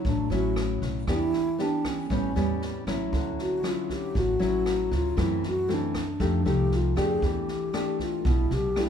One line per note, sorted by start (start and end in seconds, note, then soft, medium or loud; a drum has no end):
0.00 0.27 F#3 medium
0.00 0.27 C#4 medium
0.00 0.27 E4 medium
0.05 0.28 A1 medium
0.05 1.05 A2 soft
0.05 0.29 D4 medium
0.05 kick medium
0.05 snare soft
0.30 0.78 A1 medium
0.30 1.03 F#3 medium
0.30 1.04 C#4 medium
0.30 1.04 E4 medium
0.30 0.79 F#4 medium
0.30 snare soft
0.56 cross-stick medium
0.56 snare soft
0.82 1.06 B1 medium
0.82 kick soft
0.82 snare soft
1.07 1.31 E2 medium
1.07 2.07 E3 medium
1.07 1.40 B3 soft
1.07 1.40 D4 soft
1.07 1.64 E4 loud
1.07 1.41 G4 medium
1.07 kick soft
1.07 cross-stick medium
1.07 snare soft
1.33 snare soft
1.58 2.08 B3 soft
1.58 2.08 D4 soft
1.58 1.89 D4 medium
1.58 2.08 G4 medium
1.58 snare soft
1.85 2.88 C#4 medium
1.85 kick soft
1.85 cross-stick medium
1.85 snare soft
2.10 2.34 A1 medium
2.10 3.10 A2 medium
2.10 2.31 G3 medium
2.10 2.32 B3 soft
2.10 2.32 C#4 medium
2.10 kick medium
2.10 snare soft
2.36 2.83 E2 medium
2.36 2.83 G3 soft
2.36 2.83 B3 medium
2.36 2.83 C#4 medium
2.36 snare soft
2.62 snare soft
2.87 3.11 A1 medium
2.87 3.60 F#3 medium
2.87 3.60 C#4 medium
2.87 3.60 E4 medium
2.87 kick soft
2.87 cross-stick medium
2.87 snare soft
3.12 3.36 D2 medium
3.12 4.12 D3 soft
3.12 kick soft
3.12 snare soft
3.39 3.70 F#4 medium
3.39 snare soft
3.63 4.36 F#3 soft
3.63 4.36 C#4 medium
3.63 4.37 E4 medium
3.63 cross-stick medium
3.63 snare soft
3.69 3.94 F4 medium
3.90 4.20 G4 medium
3.90 kick soft
3.90 snare soft
4.14 4.39 A1 medium
4.14 5.14 A2 medium
4.14 kick medium
4.14 snare soft
4.18 4.93 F#4 medium
4.39 4.88 A1 medium
4.39 5.13 F#3 medium
4.39 5.13 C#4 medium
4.39 5.13 E4 medium
4.39 snare soft
4.66 cross-stick medium
4.66 snare soft
4.91 5.15 D2 medium
4.91 5.24 F4 medium
4.91 kick soft
4.91 snare soft
5.16 6.17 F#2 soft
5.16 5.41 F#2 medium
5.16 5.50 E3 medium
5.16 5.50 A3 medium
5.16 5.50 C4 medium
5.16 kick soft
5.16 cross-stick medium
5.16 snare soft
5.22 5.45 E4 medium
5.43 snare soft
5.48 5.75 F#4 medium
5.68 6.03 E3 medium
5.68 6.03 A3 soft
5.68 6.03 C4 medium
5.68 snare soft
5.74 6.51 D4 medium
5.94 kick soft
5.94 cross-stick medium
5.94 snare soft
6.20 6.44 F2 medium
6.20 7.20 F3 medium
6.20 6.41 A3 medium
6.20 6.42 D#4 medium
6.20 6.42 G4 medium
6.20 kick medium
6.20 snare soft
6.45 6.93 C2 medium
6.45 6.93 A3 soft
6.45 6.93 D#4 medium
6.45 6.93 G4 medium
6.45 snare soft
6.49 6.78 G4 medium
6.72 snare soft
6.76 6.99 F4 medium
6.96 7.21 F2 medium
6.96 7.69 A3 medium
6.96 7.70 D4 medium
6.96 7.70 G4 medium
6.96 7.28 G#4 medium
6.96 kick soft
6.96 cross-stick medium
6.96 snare soft
7.22 7.46 E2 medium
7.22 8.22 E3 medium
7.22 kick medium
7.22 snare soft
7.27 8.01 G4 medium
7.48 snare soft
7.73 8.72 A3 soft
7.73 8.72 D4 medium
7.73 8.72 G4 medium
7.73 cross-stick medium
7.73 snare soft
7.99 8.30 F4 medium
7.99 kick soft
7.99 snare soft
8.25 8.49 B1 medium
8.25 8.89 B2 medium
8.25 kick medium
8.25 snare soft
8.29 8.55 E4 medium
8.51 8.89 B1 medium
8.51 8.81 G4 medium
8.51 snare soft
8.76 8.89 A3 medium
8.76 8.89 D4 soft
8.76 8.89 G4 medium
8.76 cross-stick medium
8.76 snare soft
8.80 8.89 E4 medium